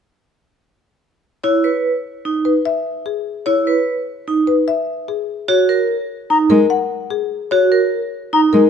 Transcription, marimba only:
1.44 1.70 C#5 medium
2.45 2.72 B4 medium
2.65 2.92 E5 medium
3.06 3.32 G#4 soft
3.46 3.73 C#5 medium
4.47 4.74 B4 medium
4.68 4.94 E5 medium
5.08 5.35 G#4 soft
5.48 5.75 C#5 medium
6.50 6.77 A#4 medium
6.70 6.97 F#5 medium
7.11 7.37 G#4 medium
7.51 7.78 C#5 medium
8.53 8.70 A#4 medium

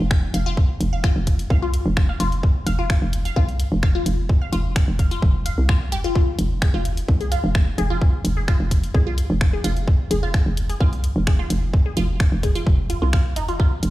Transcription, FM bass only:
0.00 0.28 F1 loud
0.34 0.63 F1 loud
0.81 1.10 F1 loud
1.16 1.45 F1 medium
1.50 1.79 C2 medium
1.86 2.14 F1 loud
2.20 2.49 F1 loud
2.67 2.96 F1 loud
3.02 3.31 F1 medium
3.36 3.65 C2 loud
3.72 4.00 F1 loud
4.06 4.35 F1 medium
4.53 4.82 F1 loud
4.88 5.17 F1 medium
5.22 5.51 F1 loud
5.58 5.94 C2 medium
5.92 6.21 F1 medium
6.39 6.68 F1 loud
6.74 7.03 F1 medium
7.08 7.38 C2 medium
7.44 7.72 F1 loud
7.78 8.07 F1 loud
8.25 8.54 F1 loud
8.60 8.89 F1 medium
8.94 9.24 C2 medium
9.30 9.58 F1 loud
9.64 9.93 F1 loud
10.11 10.40 F1 loud
10.46 10.75 F1 medium
10.80 11.10 C2 medium
11.16 11.44 F1 loud
11.50 11.79 F1 loud
11.97 12.26 F1 loud
12.32 12.61 F1 medium
12.67 12.96 F1 loud
13.02 13.38 C2 medium
13.36 13.65 F1 medium
13.83 13.90 F1 loud

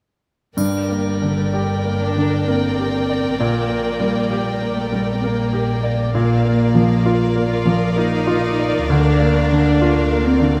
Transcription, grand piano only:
0.57 3.35 G2 soft
0.89 1.40 A#3 soft
1.22 1.72 D3 soft
1.54 2.03 G4 soft
1.84 2.34 A#3 soft
2.16 2.66 D3 soft
2.47 2.97 A#3 soft
2.79 3.28 G4 soft
3.10 3.40 D5 soft
3.40 6.11 A#2 soft
3.69 4.18 A#3 soft
4.00 4.48 G3 soft
4.31 4.80 G4 soft
4.62 5.11 A#3 soft
4.93 5.42 G3 soft
5.24 5.73 A#3 soft
5.53 6.02 G4 soft
5.83 6.14 D5 soft
6.15 8.85 A#2 soft
6.45 6.93 A#3 soft
6.74 7.23 F3 soft
7.06 7.54 F4 soft
7.36 7.85 A#3 soft
7.66 8.15 F3 soft
7.96 8.46 A#3 soft
8.27 8.77 F4 soft
8.59 8.90 D5 soft
8.89 10.60 D2 medium
9.20 9.68 A#3 soft
9.51 9.99 D3 soft
9.81 10.29 F4 soft
10.10 10.58 A#3 soft
10.40 10.60 D3 soft

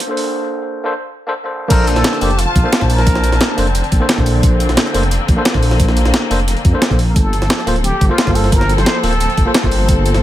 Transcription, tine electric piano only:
0.07 0.82 A#3 medium
0.07 0.83 D4 medium
0.07 0.84 A4 medium
0.07 0.84 C5 medium
0.84 0.92 A#3 medium
0.84 0.93 D4 medium
0.84 0.93 A4 medium
0.84 0.93 C5 medium
1.27 1.32 A#3 loud
1.27 1.32 D4 medium
1.27 1.33 A4 medium
1.27 1.33 C5 loud
1.44 1.67 A#3 medium
1.44 1.68 D4 medium
1.44 1.69 A4 medium
1.44 1.70 C5 medium
1.68 2.17 A#3 loud
1.68 2.18 D4 medium
1.68 2.19 A4 medium
1.68 2.19 C5 loud
2.21 2.29 A#3 medium
2.21 2.29 D4 medium
2.21 2.29 A4 medium
2.21 2.30 C5 loud
2.63 2.68 A#3 loud
2.63 2.69 D4 medium
2.63 2.69 A4 medium
2.63 2.69 C5 loud
2.80 3.55 A#3 medium
2.80 3.56 D4 medium
2.80 3.57 C5 medium
2.80 3.56 A5 medium
3.57 3.65 A#3 medium
3.57 3.65 D4 medium
3.57 3.66 A4 medium
3.57 3.66 C5 loud
4.00 4.05 A#3 loud
4.00 4.05 D4 medium
4.00 4.05 A4 medium
4.00 4.06 C5 loud
4.16 4.91 A#3 medium
4.16 4.92 D4 medium
4.16 4.93 A4 medium
4.16 4.93 C5 medium
4.93 5.01 A#3 medium
4.93 5.02 D4 medium
4.93 5.02 A4 medium
4.93 5.02 C5 loud
5.37 5.41 A#3 loud
5.37 5.42 D4 medium
5.37 5.42 A4 medium
5.37 5.42 C5 loud
5.53 6.28 A#3 medium
5.53 6.29 D4 medium
5.53 6.29 A4 medium
5.53 6.30 C5 medium
6.30 6.38 A#3 medium
6.30 6.38 D4 medium
6.30 6.38 A4 medium
6.30 6.39 C5 loud
6.73 6.80 A#3 medium
6.73 6.81 D4 medium
6.73 6.81 A4 medium
6.73 6.81 C5 loud
6.90 6.97 A#3 medium
6.90 6.98 D4 medium
6.90 6.98 A4 medium
6.90 6.98 C5 medium
7.66 7.74 A#3 medium
7.66 7.75 F4 medium
7.66 7.75 A4 medium
7.66 7.75 C5 loud
8.09 8.14 A#3 loud
8.09 8.14 F4 medium
8.09 8.15 A4 medium
8.09 8.15 C5 loud
8.25 9.01 A#3 medium
8.25 9.01 F4 medium
8.25 9.02 A4 medium
8.25 9.03 C5 medium
9.03 9.11 A#3 medium
9.03 9.11 F4 medium
9.03 9.11 A4 medium
9.03 9.12 C5 medium
9.45 9.50 A#3 loud
9.45 9.51 F4 medium
9.45 9.51 A4 medium
9.45 9.51 C5 loud
9.61 10.22 A#3 medium
9.61 10.22 F4 medium
9.61 10.22 A4 medium
9.61 10.22 C5 medium

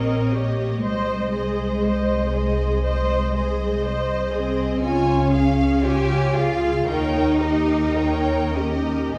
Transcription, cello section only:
0.00 0.31 C4 medium
0.32 0.83 A#3 medium
0.83 3.80 G#3 medium
4.32 4.79 C4 medium
4.82 5.84 C#4 medium
5.84 6.36 G4 medium
6.36 6.88 F4 medium
6.88 8.55 D#4 medium
8.55 9.16 C#4 medium

